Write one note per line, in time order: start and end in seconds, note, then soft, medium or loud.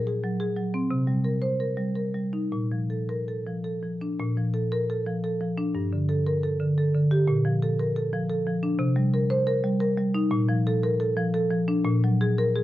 0.00 0.87 A#2 medium
0.07 0.34 G#4 medium
0.24 0.50 F#3 soft
0.40 0.67 G#4 medium
0.57 0.84 F#3 medium
0.74 0.91 C4 medium
0.91 2.48 C3 medium
1.07 1.35 G3 soft
1.25 1.53 A#4 soft
1.42 1.60 C5 medium
1.60 1.89 A#4 soft
1.77 2.07 G3 soft
1.95 2.25 A#4 soft
2.14 2.44 G3 soft
2.33 2.52 D#4 soft
2.52 4.16 A#2 medium
2.72 3.02 F3 soft
2.90 3.20 A4 soft
3.09 3.27 A#4 soft
3.28 3.57 A4 soft
3.47 3.76 F3 soft
3.64 3.94 A4 soft
3.83 4.13 F3 soft
4.01 4.20 D4 soft
4.19 5.71 A#2 medium
4.37 4.65 F3 soft
4.54 4.82 A4 medium
4.72 4.90 A#4 medium
4.90 5.17 A4 medium
5.06 5.34 F3 medium
5.24 5.51 A4 medium
5.41 5.68 F3 soft
5.58 5.75 D4 medium
5.75 7.25 G2 medium
5.93 6.20 D3 soft
6.09 6.36 A4 medium
6.27 6.44 A#4 medium
6.43 6.71 A4 medium
6.60 6.88 D3 medium
6.78 7.05 A4 medium
6.95 7.22 D3 soft
7.11 7.29 G4 medium
7.28 8.75 A#2 medium
7.45 7.72 F3 medium
7.62 7.89 A4 medium
7.79 7.96 A#4 medium
7.96 8.23 A4 medium
8.13 8.39 F3 medium
8.30 8.56 A4 medium
8.47 8.73 F3 medium
8.63 8.80 D4 medium
8.79 10.27 C3 medium
8.96 9.23 G3 soft
9.14 9.41 A#4 medium
9.30 9.47 C5 medium
9.47 9.74 A#4 medium
9.64 9.91 G3 medium
9.81 10.08 A#4 medium
9.98 10.25 G3 medium
10.14 10.32 D#4 medium
10.31 11.81 A#2 medium
10.49 10.76 F3 medium
10.67 10.94 A4 medium
10.83 11.00 A#4 medium
11.00 11.27 A4 medium
11.17 11.44 F3 medium
11.34 11.61 A4 medium
11.51 11.78 F3 medium
11.68 11.85 D4 medium
11.85 12.64 A#2 medium
12.04 12.31 F#3 medium
12.21 12.49 G#4 medium
12.38 12.56 A#4 medium
12.56 12.64 G#4 medium